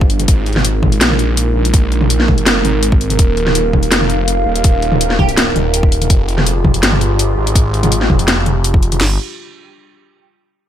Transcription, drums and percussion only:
0.01 kick
0.10 open hi-hat
0.20 closed hi-hat, mid tom
0.28 kick, closed hi-hat
0.46 open hi-hat
0.53 snare, mid tom, open hi-hat
0.59 open hi-hat
0.65 closed hi-hat
0.83 kick, mid tom
0.92 open hi-hat
1.01 snare, closed hi-hat
1.11 mid tom
1.19 closed hi-hat
1.37 closed hi-hat
1.65 closed hi-hat
1.74 kick, closed hi-hat
1.92 open hi-hat
2.01 mid tom
2.10 closed hi-hat
2.20 snare
2.28 kick, mid tom
2.38 open hi-hat
2.46 snare, closed hi-hat
2.65 closed hi-hat, mid tom
2.83 closed hi-hat
2.92 kick
3.01 open hi-hat
3.10 closed hi-hat, mid tom
3.19 kick, closed hi-hat
3.37 open hi-hat
3.47 snare, mid tom
3.55 closed hi-hat
3.73 kick, mid tom
3.83 open hi-hat
3.92 snare, closed hi-hat
4.01 mid tom
4.10 closed hi-hat
4.28 closed hi-hat
4.56 closed hi-hat
4.64 kick, closed hi-hat
4.82 open hi-hat
4.92 mid tom
5.01 closed hi-hat
5.10 snare
5.19 kick, mid tom
5.29 open hi-hat
5.37 snare, closed hi-hat
5.56 closed hi-hat, mid tom
5.74 closed hi-hat
5.83 kick
5.92 open hi-hat
6.02 closed hi-hat, mid tom
6.10 kick, closed hi-hat
6.29 open hi-hat
6.38 snare, mid tom
6.47 closed hi-hat
6.65 kick, mid tom
6.74 open hi-hat
6.83 snare, closed hi-hat
6.92 mid tom
7.01 closed hi-hat
7.19 closed hi-hat
7.47 closed hi-hat
7.55 kick, closed hi-hat
7.74 open hi-hat
7.83 closed hi-hat, mid tom
7.92 closed hi-hat
8.01 snare
8.10 kick, mid tom
8.19 open hi-hat
8.28 snare, closed hi-hat
8.46 closed hi-hat, mid tom
8.64 closed hi-hat
8.74 kick
8.83 open hi-hat
8.92 closed hi-hat, mid tom
9.01 snare, crash

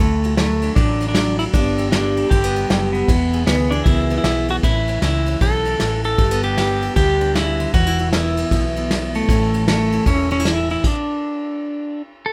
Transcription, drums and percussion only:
0.23 ride
0.37 snare, ride
0.62 ride
0.76 kick, ride
1.00 ride
1.14 snare, ride
1.39 ride
1.53 kick, ride
1.78 ride
1.92 snare, ride
2.17 ride
2.31 kick, ride
2.56 ride
2.70 snare, ride
2.94 ride
3.08 kick, ride
3.33 ride
3.47 snare, ride
3.72 ride
3.86 kick, ride
4.10 ride
4.24 snare, ride
4.48 ride
4.63 kick, ride
4.87 ride
5.02 snare, ride
5.26 ride
5.41 kick, ride
5.65 ride
5.80 snare, ride
6.04 ride
6.18 kick, ride
6.43 ride
6.57 snare, ride
6.82 ride
6.96 kick, ride
7.21 ride
7.35 snare, ride
7.60 ride
7.74 kick, ride
7.98 ride
8.13 snare, ride
8.37 ride
8.51 kick, ride
8.76 ride
8.91 snare, ride
9.14 ride
9.29 kick, ride
9.54 ride
9.68 snare, ride
9.92 ride
10.06 kick, ride
10.31 ride
10.45 snare, ride
10.70 ride
10.84 kick, crash

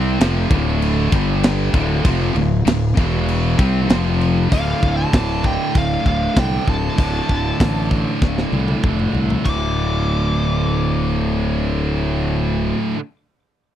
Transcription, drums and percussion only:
0.21 snare, crash
0.51 kick, crash
0.82 crash
1.12 kick, crash
1.43 snare, crash
1.74 kick, crash
2.05 kick, crash
2.36 crash
2.67 snare, crash
2.97 kick, crash
3.29 crash
3.59 kick, crash
3.90 snare, crash
4.21 crash
4.52 kick, open hi-hat
4.83 kick
5.13 kick, snare, open hi-hat
5.44 kick
5.75 kick, open hi-hat
6.06 kick
6.36 kick, snare, open hi-hat
6.68 kick
6.98 kick, open hi-hat
7.29 kick
7.60 kick, snare, open hi-hat
7.91 kick
8.22 kick, snare
8.38 snare
8.53 high tom
8.68 high tom
8.83 kick, mid tom
8.99 mid tom
9.14 floor tom
9.30 floor tom
9.46 kick, crash

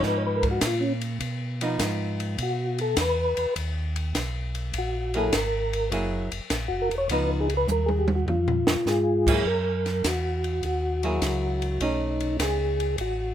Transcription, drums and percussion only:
0.03 kick, snare
0.43 kick, ride
0.61 kick, snare, hi-hat pedal, ride
1.01 ride
1.20 kick, ride
1.61 ride
1.79 kick, snare, hi-hat pedal, ride
2.20 ride
2.38 kick, ride
2.78 ride
2.97 kick, snare, hi-hat pedal, ride
3.37 ride
3.56 kick, ride
3.96 ride
4.15 kick, snare, hi-hat pedal, ride
4.55 ride
4.74 kick, ride
5.14 ride
5.33 kick, snare, hi-hat pedal, ride
5.73 ride
5.92 kick, ride
6.32 ride
6.50 kick, snare, hi-hat pedal, ride
6.91 ride
7.09 kick, ride
7.50 ride
7.68 hi-hat pedal, high tom
7.89 high tom
8.08 high tom
8.28 mid tom
8.48 floor tom
8.67 snare
8.87 snare, hi-hat pedal
9.27 kick, crash
9.45 kick
9.86 snare, ride
10.04 kick, snare, hi-hat pedal, ride
10.44 ride
10.63 kick, ride
11.03 ride
11.22 kick, snare, hi-hat pedal, ride
11.62 ride
11.81 kick, ride
12.20 ride
12.39 kick, snare, hi-hat pedal, ride
12.80 ride
12.98 kick, ride

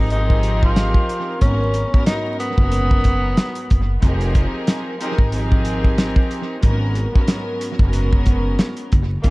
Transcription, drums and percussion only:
0.10 closed hi-hat
0.30 kick
0.43 closed hi-hat
0.63 kick
0.76 snare, closed hi-hat
0.94 kick
1.09 closed hi-hat
1.41 kick, closed hi-hat
1.74 closed hi-hat
1.94 kick
2.06 snare, closed hi-hat
2.40 closed hi-hat
2.58 kick
2.72 closed hi-hat
2.91 kick
3.04 kick, closed hi-hat
3.37 snare, closed hi-hat
3.55 closed hi-hat
3.70 kick, closed hi-hat
4.02 kick, closed hi-hat
4.21 closed hi-hat
4.35 kick, closed hi-hat
4.67 snare, closed hi-hat
5.01 closed hi-hat
5.18 kick
5.32 closed hi-hat
5.52 kick
5.65 closed hi-hat
5.84 kick
5.98 snare, closed hi-hat
6.16 kick
6.31 closed hi-hat
6.63 kick, closed hi-hat
6.95 closed hi-hat
7.16 kick
7.28 snare, closed hi-hat
7.61 closed hi-hat
7.79 kick
7.93 closed hi-hat
8.13 kick
8.26 kick, closed hi-hat
8.59 snare, closed hi-hat
8.77 closed hi-hat
8.92 kick, closed hi-hat
9.24 kick, closed hi-hat

